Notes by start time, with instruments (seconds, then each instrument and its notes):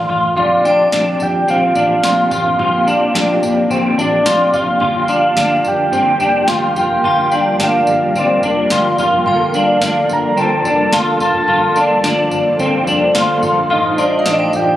Already playing: ambient pad D#3 A3 F4
0.09 fingered electric bass A1, clean electric guitar F4, kick, floor tom
0.23 floor tom
0.35 fingered electric bass A#1, clean electric guitar A#2 D3 F3 C4 F4, ambient pad A#3 D4 G4, soft synth lead D5, kick, floor tom
0.40 clean electric guitar G4
0.63 clean electric guitar D4 F4 G4, synth bell G5, tambourine
0.68 clean electric guitar F3 C4
0.91 fingered electric bass A#1, clean electric guitar F3 C4 D4, snare, tambourine
0.95 clean electric guitar F4 G4
1.19 fingered electric bass A#1, clean electric guitar F4 G4, soft synth lead G5, floor tom, tambourine
1.23 clean electric guitar F3 C4
1.47 fingered electric bass A#1, clean electric guitar A#2 D3 F3 C4 F4, soft synth lead F5, tambourine
1.51 clean electric guitar G4
1.74 fingered electric bass A1, clean electric guitar D4 F4 G4, tambourine
1.78 clean electric guitar F3 C4
2.02 fingered electric bass A#1, clean electric guitar F3 C4 F4, snare, tambourine
2.06 clean electric guitar F4 G4
2.31 fingered electric bass A1, clean electric guitar C4 F4 G4, soft synth lead F5, kick, floor tom, tambourine
2.36 clean electric guitar F3
2.45 floor tom
2.58 fingered electric bass A#1, clean electric guitar A#2 D3 F3 C4 F4, kick, floor tom
2.62 clean electric guitar G4
2.86 clean electric guitar D4 G4, tambourine
2.90 clean electric guitar F3 C4
3.14 fingered electric bass A#1, clean electric guitar F3 C4 D4, snare, tambourine
3.18 clean electric guitar F4 G4
3.42 fingered electric bass A#1, clean electric guitar F4 G4, floor tom, tambourine
3.46 clean electric guitar F3 C4
3.69 fingered electric bass A#1, clean electric guitar A#2 D3 F3 C4 F4 G4, kick, tambourine
3.97 fingered electric bass A1, clean electric guitar C4 D4 F4 G4, soft synth lead D5, tambourine
4.03 clean electric guitar F3
4.25 fingered electric bass A#1, clean electric guitar F3 C4 F4, snare, tambourine
4.31 clean electric guitar G4
4.52 fingered electric bass F1, clean electric guitar F4 G4, soft synth lead F5, kick, floor tom, tambourine
4.56 clean electric guitar F3 C4
4.67 floor tom
4.80 fingered electric bass G1, clean electric guitar G2 D3 F3 A#3 D4 F4, ambient pad G3 F4 A#4, kick, floor tom
4.84 clean electric guitar G4
5.08 clean electric guitar A#3 D4, tambourine
5.14 clean electric guitar F3
5.36 fingered electric bass G1, clean electric guitar F3 A#3 D4, snare, tambourine
5.40 clean electric guitar D4 G4
5.64 fingered electric bass G1, clean electric guitar D4 G4, floor tom, tambourine
5.68 clean electric guitar F3 A#3, soft synth lead G5
5.92 fingered electric bass G1, clean electric guitar G2 D3 F3 A#3 C4 D4, tambourine
5.96 clean electric guitar G4
6.20 fingered electric bass F1, clean electric guitar D4 G4, tambourine
6.24 clean electric guitar F3 A#3
6.48 fingered electric bass G1, clean electric guitar F3 A#3 F4, snare, tambourine
6.52 clean electric guitar D4 G4
6.75 fingered electric bass F1, clean electric guitar A#3 D4 F4 G4, kick, floor tom, tambourine
6.80 clean electric guitar F3, soft synth lead G5
6.90 floor tom
7.03 fingered electric bass G1, clean electric guitar G2 D3 F3 A#3 D4 F4, synth bell A5, kick, floor tom
7.07 clean electric guitar G4
7.31 clean electric guitar D4 G4, tambourine
7.35 clean electric guitar F3 A#3
7.59 fingered electric bass G1, clean electric guitar F3 A#3 D4, snare, tambourine
7.63 clean electric guitar D4 G4, soft synth lead F5
7.86 fingered electric bass G1, clean electric guitar D4 G4, floor tom, tambourine
7.90 clean electric guitar F3 A#3
8.13 fingered electric bass G1, clean electric guitar G2 D3 F3 A#3 C4 D4, kick, tambourine
8.18 clean electric guitar G4, soft synth lead D5
8.41 fingered electric bass F1, clean electric guitar D4 G4, tambourine
8.46 clean electric guitar F3 A#3
8.69 fingered electric bass G1, clean electric guitar F3 A#3 F4, snare, tambourine
8.74 clean electric guitar D4 G4
8.98 fingered electric bass F1, clean electric guitar A#3 D4 F4 G4, kick, floor tom, tambourine
9.03 clean electric guitar F3
9.12 floor tom
9.26 fingered electric bass G1, clean electric guitar G2 D3 F3 A#3 D4 F4, ambient pad D4 A4, soft synth lead F5, synth bell G5, kick, floor tom
9.30 clean electric guitar A4
9.53 clean electric guitar D4 A4, tambourine
9.57 clean electric guitar F3 A#3
9.80 fingered electric bass G1, clean electric guitar F3 A#3 D4, snare, tambourine
9.85 clean electric guitar D4 A4
10.08 fingered electric bass G1, clean electric guitar A#3 D4 A4, floor tom, tambourine
10.13 clean electric guitar F3, soft synth lead A#5
10.36 fingered electric bass G1, clean electric guitar G2 D3 F3 A#3 C4 D4 A4, soft synth lead A5, tambourine
10.63 fingered electric bass F1, clean electric guitar D4 A4, tambourine
10.68 clean electric guitar F3 A#3
10.91 fingered electric bass G1, clean electric guitar F3 A#3 F4, snare, tambourine
10.96 clean electric guitar D4 A4
11.18 fingered electric bass F1, clean electric guitar D4 F4 A4, kick, floor tom, tambourine
11.23 clean electric guitar F3 A#3, soft synth lead A5
11.34 floor tom
11.47 fingered electric bass G1, clean electric guitar G2 D3 F3 A#3 D4 F4, ambient pad C5, kick, floor tom
11.51 clean electric guitar A4
11.75 clean electric guitar D4 A4, synth bell F5, tambourine
11.79 clean electric guitar F3 A#3
12.03 fingered electric bass G1, clean electric guitar F3 A#3 D4, snare, tambourine
12.07 clean electric guitar D4 A4
12.30 fingered electric bass G1, clean electric guitar D4 A4, floor tom, tambourine
12.35 clean electric guitar F3 A#3
12.58 fingered electric bass G1, clean electric guitar G2 D3 F3 A#3 C4 D4, kick, tambourine
12.63 clean electric guitar A4
12.85 fingered electric bass F1, clean electric guitar D4 A4, tambourine
12.89 clean electric guitar F3 A#3
13.12 fingered electric bass G1, clean electric guitar F3 A#3 F4, snare, tambourine
13.17 clean electric guitar D4 A4
13.41 fingered electric bass G1, clean electric guitar D4 F4 A4, kick, floor tom, tambourine
13.45 clean electric guitar F3 A#3
13.56 floor tom
13.69 fingered electric bass A1, ambient pad D#3 A3, clean electric guitar A3 D#4 F4, soft synth lead D#5, kick, floor tom
13.74 clean electric guitar C5
13.96 clean electric guitar D4 F4 C5, synth bell C5, tambourine
14.03 clean electric guitar D#4
14.19 synth bell F5
14.25 fingered electric bass A1, clean electric guitar A3 D4 D#4, snare, tambourine
14.29 clean electric guitar F4 C5
14.39 synth bell G5
14.53 fingered electric bass A1, clean electric guitar F4 C5, soft synth lead G5, floor tom, tambourine
14.59 clean electric guitar D#4